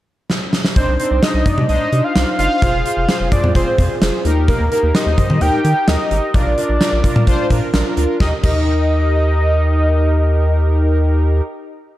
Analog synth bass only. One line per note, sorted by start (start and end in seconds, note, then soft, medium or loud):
0.76 0.85 C2 loud
0.88 0.97 C2 loud
1.11 1.20 C2 loud
1.34 1.44 C2 loud
1.58 1.67 C3 loud
1.69 1.78 C2 loud
1.93 2.02 C3 loud
2.16 2.25 C2 loud
2.39 2.48 G1 loud
2.62 2.71 F1 loud
2.74 2.83 F1 loud
2.97 3.06 F1 loud
3.20 3.30 F1 loud
3.44 3.53 F2 medium
3.55 3.65 F1 loud
3.78 3.88 F2 loud
4.02 4.11 F1 loud
4.25 4.53 D#2 loud
4.60 4.69 D#2 medium
4.83 4.92 D#2 loud
5.06 5.16 D#2 loud
5.30 5.39 D#3 loud
5.41 5.51 D#2 loud
5.65 5.74 D#3 loud
5.88 5.97 D#2 loud
6.11 6.20 G#1 loud
6.34 6.44 A#1 loud
6.46 6.55 A#1 loud
6.69 6.79 A#1 loud
6.93 7.02 A#1 loud
7.16 7.25 A#2 loud
7.27 7.37 A#1 loud
7.50 7.60 A#2 loud
7.74 7.83 A#1 loud
7.97 8.06 D2 loud
8.20 8.33 D#2 loud
8.44 11.41 D#2 loud